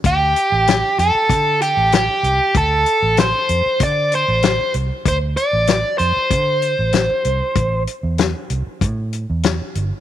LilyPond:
<<
  \new Staff \with { instrumentName = "Overdriven electric guitar" } { \time 4/4 \key d \dorian \tempo 4 = 96 g'4. a'4 g'8 g'4 | a'4 c''4 d''8 c''4 r8 | c''8 d''4 c''2~ c''8~ | c''8 r2. r8 | }
  \new Staff \with { instrumentName = "Fingered electric bass" } { \clef bass \time 4/4 \key d \dorian d,8 r16 a,,8 r16 f,16 r16 d8. a,,8 r16 c,16 r16 | d,8 r16 a,,8 r16 f,16 r16 d8. a,,8 r16 c,16 r16 | d,8 r16 a,,8 r16 f,16 r16 d8. a,,8 r16 c,16 r16 | a,,8 r16 e,8 r16 c,16 r16 a,8. e,8 r16 g,,16 r16 | }
  \new DrumStaff \with { instrumentName = "Drums" } \drummode { \time 4/4 <hh bd>8 hh8 <hh sn>8 hh8 <hh bd>8 hh8 <hh sn>8 hh8 | <hh bd>8 hh8 <hh sn>8 hh8 <hh bd>8 hh8 <hh sn>8 hh8 | <hh bd>8 hh8 <hh sn>8 hh8 <hh bd>8 hh8 <hh sn>8 hh8 | <hh bd>8 hh8 <hh sn>8 hh8 <hh bd>8 hh8 <hh sn>8 hh8 | }
>>